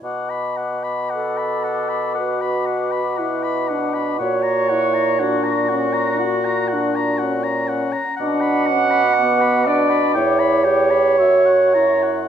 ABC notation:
X:1
M:4/4
L:1/16
Q:1/4=59
K:Bm
V:1 name="Flute"
d'16 | c'12- c'2 z2 | d'12 c'4 |]
V:2 name="Oboe"
f b f b f b f b f b f b f b f b | f ^a f a f a f a f a f a f a f a | f b f b f b f b g b g b e f ^a f |]
V:3 name="Clarinet"
z4 A4 B8 | c4 F8- F2 z2 | f6 d2 c8 |]
V:4 name="French horn"
z8 F4 E2 D2 | F2 E2 D2 C2 F2 D2 C4 | D2 C2 B,2 D2 E2 G2 F2 E2 |]
V:5 name="Bassoon" clef=bass
B,,16 | ^A,,12- A,,2 z2 | B,,8 E,,4 F,,4 |]